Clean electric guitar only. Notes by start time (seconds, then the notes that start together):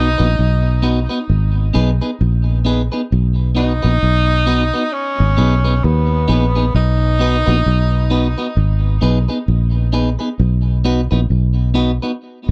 0.18 B3 D#4 F#4 B4
0.82 B3 D#4 F#4 B4
1.09 B3 D#4 F#4 B4
1.74 B3 D#4 G#4 B4
2.01 B3 D#4 G#4 B4
2.65 B3 D#4 G#4 B4
2.92 B3 D#4 G#4 B4
3.55 B3 D#4 F#4 B4
3.82 B3 D#4 F#4 B4
4.46 B3 D#4 F#4 B4
4.74 B3 D#4 F#4 B4
5.37 B3 D#4 G#4 B4
5.65 B3 D#4 G#4 B4
6.28 B3 D#4 G#4 B4
6.55 B3 D#4 G#4 B4
7.19 B3 D#4 F#4 B4
7.46 B3 D#4 F#4 B4
8.10 B3 D#4 F#4 B4
8.38 B3 D#4 F#4 B4
9.01 B3 D#4 G#4 B4
9.29 B3 D#4 G#4 B4
9.92 B3 D#4 G#4 B4
10.19 B3 D#4 G#4 B4
10.85 B3 D#4 F#4 B4
11.11 B3 D#4 F#4 B4
11.74 B3 D#4 F#4 B4
12.02 B3 D#4 F#4 B4